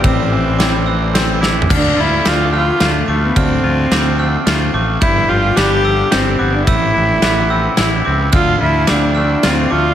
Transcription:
<<
  \new Staff \with { instrumentName = "Glockenspiel" } { \time 3/4 \key d \dorian \tempo 4 = 108 e'''4 d'''8 e'''4 d'''8 | f'''4 d'''8 f'''4 d'''8 | f'''4 d'''8 f'''4 d'''8 | g'''4 d'''8 e'''4 d'''8 |
e'''4 d'''8 e'''4 d'''8 | f'''4 d'''8 f'''4 d'''8 | }
  \new Staff \with { instrumentName = "Ambient pad" } { \time 3/4 \key d \dorian <a' c'' e'' b''>2. | r2. | r2. | r2. |
r2. | <a' d'' f'' c'''>2. | }
  \new Staff \with { instrumentName = "Cello" } { \time 3/4 \key d \dorian c'2 r4 | d'8 e'8 f'8 f'8 a8. b16 | c'2 r4 | e'8 f'8 g'4 c'8. d'16 |
e'2 r4 | f'8 e'8 d'4 c'8 f'8 | }
  \new Staff \with { instrumentName = "Clean electric guitar" } { \time 3/4 \key d \dorian a,8 e8 c'8 e8 c'8 e'8 | d8 f'8 c'8 a8 f'8 a8 | d8 f'8 c'8 a8 f'8 a8 | g,8 g'8 d'4 g'8 b8 |
a,8 e'8 b8 c'8 e'8 c'8 | d8 f'8 c'8 a8 f'8 a8 | }
  \new Staff \with { instrumentName = "Fingered electric bass" } { \clef bass \time 3/4 \key d \dorian a,,2. | d,8 d,8 d,4 d,8 d,8 | d,8 d,8 d,4 d,8 a,,8 | g,,8 g,,8 g,,4 g,,8 g,,8 |
a,,8 a,,8 a,,4 a,,8 cis,8 | d,8 d,8 d,4 d,8 d,8 | }
  \new DrumStaff \with { instrumentName = "Drums" } \drummode { \time 3/4 <bd cymr>4 <cymr sn>4 \tuplet 3/2 { <cymr sn>16 r16 r16 sn16 r16 tomfh16 } | <cymc bd>4 <cymr sn>4 <cymr sn>4 | <bd cymr>4 <cymr sn>4 <cymr sn>4 | <bd cymr>4 <cymr sn>4 <cymr sn>4 |
<bd cymr>4 <cymr sn>4 <cymr sn>4 | <bd cymr>4 <cymr sn>4 <cymr sn>4 | }
>>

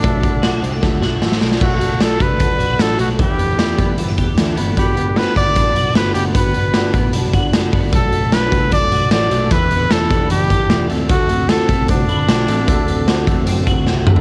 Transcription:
<<
  \new Staff \with { instrumentName = "Trumpet" } { \time 4/4 \key b \phrygian \tempo 4 = 152 d'2. r4 | fis'4 a'8 b'4. a'8 fis'8 | g'2 r2 | g'4 b'8 d''4. b'8 g'8 |
b'2 r2 | a'4 b'4 d''4 d''4 | b'4 a'4 g'4. r8 | fis'4 a'4 d'2~ |
d'2. r4 | }
  \new Staff \with { instrumentName = "Clean electric guitar" } { \time 4/4 \key b \phrygian <a d' fis'>8 a8 fis'8 c'16 d'16 a8 fis'8 a8 d'8 | a8 a8 d'8 a8 d'8 fis'8 d'8 a8 | e8 b8 d'8 b8 c'16 d'16 g'8 d'8 b8 | b8 b8 c'16 d'16 b8 d'8 fis'8 d'8 b8 |
b8 b8 d'8 b8 d'8 fis'8 d'8 b8 | a8 a8 d'8 a8 d'8 fis'8 d'8 a8 | e8 b8 d'8 b8 d'8 g'8 d'8 a8 | a8 a8 c'8 a8 c'8 e'16 fis'16 c'8 a8 |
a8 a8 c'8 a8 c'8 fis'8 c'8 a8 | }
  \new Staff \with { instrumentName = "Steel-string acoustic guitar" } { \time 4/4 \key b \phrygian <b, fis a d' fis'>8 <a d' fis'>8 <fis a d' fis'>8 <a d' fis'>8 <b, fis a d' fis'>8 <a d' fis'>8 <fis a d' fis'>8 <a d' fis'>8 | <b, fis a d' fis'>8 <a d' fis'>8 <b, fis a d' fis'>8 <a d' fis'>8 <fis a d' fis'>8 <a d' fis'>8 <b, fis a d' fis'>8 <a d' fis'>8 | <e b d' g'>8 <b d' g'>8 <e b d' g'>8 <b d' g'>8 <e b d' g'>8 <b d' g'>8 <e b d' g'>8 <b d' fis'>8 | <g b d' fis'>8 <b d' fis'>8 <g b d' fis'>8 <b d' fis'>8 <g b d' fis'>8 <b d' fis'>8 <g b d' fis'>8 <b d' fis'>8 |
<g b d' fis'>8 <b d' fis'>8 <g b d' fis'>8 <b d' fis'>8 <g b d' fis'>8 <b d' fis'>8 <g b d' fis'>8 <b d' fis'>8 | <b, fis a d' fis'>8 <a d' fis'>8 <b, fis a d' fis'>8 <a d' fis'>8 <fis a d' fis'>8 <a d' fis'>8 <b, fis a d' fis'>8 <a d' fis'>8 | <e b d' g'>8 <b d' g'>8 <e b d' g'>8 <b d' g'>8 <e b d' g'>8 <b d' g'>8 <e b d' g'>8 <a c' fis'>8 | <d a c' fis'>8 <a c' fis'>8 <d a c' fis'>8 <a c' fis'>8 <d a c' fis'>8 <a c'>8 <d a c' fis'>8 <a c' fis'>8 |
<d a c' fis'>8 <a c' fis'>8 <d a c' fis'>8 <a c' fis'>8 <d a c' fis'>8 <a c' fis'>8 <d a c' fis'>8 <a c' fis'>8 | }
  \new Staff \with { instrumentName = "Picked electric bass" } { \clef bass \time 4/4 \key b \phrygian b,,4. c,8 d,8 b,,8 a,,8 b,,8 | b,,4. c,8 d,8 b,,8 a,,8 b,,8 | e,4. fis,8 g,8 e,8 d,8 g,,8~ | g,,4. g,,8 a,,8 b,,8 g,,8 fis,,8 |
g,,4. a,,8 b,,8 g,,8 fis,,8 g,,8 | b,,4. c,8 d,8 b,,8 a,,8 b,,8 | e,,2 fis,,8 g,,8 e,,8 d,8~ | d,4. b,,8 c,8 d,8 b,,8 a,,8 |
d,4. e,8 fis,8 d,8 c,8 d,8 | }
  \new DrumStaff \with { instrumentName = "Drums" } \drummode { \time 4/4 <hh bd>8 <hh bd>8 <hh sn>8 hh8 <bd sn>8 sn8 sn16 sn16 sn16 sn16 | <cymc bd>8 hh8 <hh sn>8 <hh bd>8 <hh bd>8 hh8 <hh sn>8 hh8 | <hh bd>8 hh8 <hh sn>8 <hh bd>8 hh8 <hh bd>8 <hh sn>8 hh8 | <hh bd>8 hh8 <hh sn>8 <hh bd>8 <hh bd>8 hh8 <hh sn>8 hh8 |
<hh bd>8 hh8 <hh sn>8 <hh bd>8 hh8 <hh bd>8 <hh sn>8 <hho bd>8 | <hh bd>8 hh8 <hh sn>8 <hh bd>8 <hh bd>8 hh8 <hh sn>8 hh8 | <hh bd>8 hh8 <hh sn>8 <hh bd>8 hh8 <hh bd>8 <hh sn>8 hh8 | <hh bd>8 hh8 <hh sn>8 <hh bd>8 <hh bd>8 hh8 <hh sn>8 hh8 |
<hh bd>8 hh8 <hh sn>8 <hh bd>8 hh8 <hh bd>8 sn8 toml16 tomfh16 | }
>>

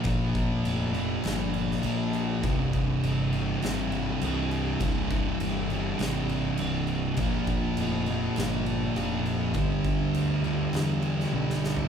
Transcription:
<<
  \new Staff \with { instrumentName = "Distorted electric guitar" } { \clef bass \time 4/4 \key bes \mixolydian \tempo 4 = 101 <bes, f bes>4. <bes, f bes>4. <bes, f bes>4 | <c, g, c>4. <c, g, c>4. <c, g, c>4 | <c, g, c>4. <c, g, c>4. <c, g, c>4 | <bes, f bes>4. <bes, f bes>4. <bes, f bes>4 |
<g, d g>4. <g, d g>4. <g, d g>4 | }
  \new Staff \with { instrumentName = "Distorted electric guitar" } { \clef bass \time 4/4 \key bes \mixolydian <bes, f bes>2 <bes, f bes>2 | <c, g, c>2 <c, g, c>2 | <c, g, c>2 <c, g, c>2 | <bes, f bes>2 <bes, f bes>2 |
<g, d g>2 <g, d g>2 | }
  \new Staff \with { instrumentName = "Fingered electric bass" } { \clef bass \time 4/4 \key bes \mixolydian bes,,4 f,,4 g,,4 bes,,4 | c,,4 g,,4 aes,,4 c,4 | c,,4 g,,4 aes,,4 c,,4 | bes,,4 f,,4 g,,4 f,,4 |
g,,4 d,4 e,4 b,,4 | }
  \new DrumStaff \with { instrumentName = "Drums" } \drummode { \time 4/4 <cymc bd>8 <cymc bd>8 cymc8 cymc8 <cymc sn>8 cymc16 sn16 cymc8 cymc8 | <cymc bd>8 <cymc bd>8 cymc8 cymc8 <cymc sn>8 cymc8 cymc8 cymc8 | <cymc bd>8 <cymc bd>8 cymc8 cymc8 <cymc sn>8 cymc8 cymc8 cymc8 | <cymc bd>8 <cymc bd>8 cymc8 cymc8 <cymc sn>8 cymc8 cymc8 cymc8 |
<cymc bd>8 <cymc bd>8 cymc8 cymc8 <cymc sn>8 cymc16 sn16 tommh16 sn16 sn16 tomfh16 | }
>>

